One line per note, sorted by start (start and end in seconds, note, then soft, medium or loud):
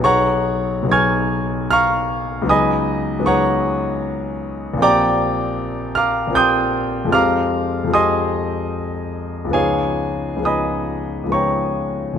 0.00 0.82 B1 medium
0.00 0.83 F#3 medium
0.00 0.84 B3 medium
0.00 0.85 D#4 medium
0.00 0.87 G#4 medium
0.00 0.89 C#6 loud
0.04 0.85 C#5 medium
0.04 0.86 F#5 medium
0.04 0.86 A#5 medium
0.83 2.41 B1 medium
0.83 2.41 F#3 medium
0.88 2.44 B3 soft
0.88 2.44 D#4 soft
0.88 2.45 G#4 soft
0.88 1.71 G#6 loud
0.92 1.68 G#5 medium
0.92 1.67 C#6 medium
0.92 1.67 F6 medium
1.71 2.45 F5 medium
1.71 2.46 A#5 medium
1.71 2.46 C#6 medium
1.71 2.49 F6 loud
2.42 3.17 C#2 medium
2.42 3.19 F#3 medium
2.46 3.20 B3 medium
2.46 3.22 D#4 medium
2.46 3.24 G#4 medium
2.46 3.26 D#6 loud
2.50 3.23 D#5 medium
2.50 3.22 G#5 medium
2.50 3.23 B5 medium
3.19 4.74 C#2 medium
3.19 4.75 F#3 medium
3.19 4.75 B3 medium
3.24 4.76 D#4 medium
3.24 4.77 G#4 medium
3.24 4.78 C#5 medium
3.24 4.78 F#5 medium
3.24 4.78 A#5 medium
3.24 4.81 C#6 loud
4.74 6.26 A#1 medium
4.74 6.29 F3 medium
4.78 6.29 A#3 medium
4.78 6.31 C4 medium
4.78 6.33 G4 medium
4.78 5.96 D5 loud
4.78 5.96 G5 medium
4.82 5.96 A#5 medium
4.82 5.96 D6 loud
5.95 6.35 F5 medium
5.95 6.35 A#5 medium
5.95 6.35 D6 medium
5.95 6.36 F6 loud
6.27 7.08 A#1 medium
6.27 7.05 F3 medium
6.27 7.10 A#3 medium
6.33 7.10 C4 medium
6.33 7.12 G4 medium
6.33 7.11 G5 medium
6.33 7.11 D#6 medium
6.33 7.15 G6 loud
6.37 7.11 C6 medium
7.05 7.83 F2 medium
7.05 7.86 F3 medium
7.05 7.87 G#3 medium
7.11 7.89 C4 medium
7.11 7.91 G4 medium
7.11 7.90 F5 medium
7.11 7.90 A#5 medium
7.11 7.90 D6 medium
7.11 7.93 F6 loud
7.84 9.45 F2 medium
7.84 9.45 F3 medium
7.88 9.47 G#3 soft
7.88 9.48 C4 medium
7.93 9.49 G4 soft
7.93 9.50 D#5 medium
7.93 9.49 G#5 medium
7.93 9.50 C6 medium
7.93 9.53 D#6 loud
9.45 10.35 C#2 medium
9.45 10.36 F3 soft
9.45 10.38 G#3 soft
9.51 10.40 B3 soft
9.51 10.41 D#4 medium
9.51 10.41 G#4 medium
9.51 10.40 C#5 medium
9.51 10.41 F5 medium
9.51 10.44 G#5 loud
10.36 11.22 C#2 medium
10.36 11.24 F3 soft
10.36 11.26 G#3 soft
10.43 11.28 B3 soft
10.43 11.30 D#4 soft
10.43 11.30 D#5 medium
10.43 11.29 G#5 medium
10.43 11.30 B5 medium
10.43 11.33 D#6 medium
11.24 12.15 C#2 soft
11.24 12.14 F3 soft
11.24 12.15 G#3 soft
11.30 12.19 B3 soft
11.30 12.19 D#4 soft
11.30 12.19 C#5 medium
11.30 12.19 A#5 medium
11.30 12.19 C#6 medium
11.34 12.19 G5 medium
12.14 12.19 F2 soft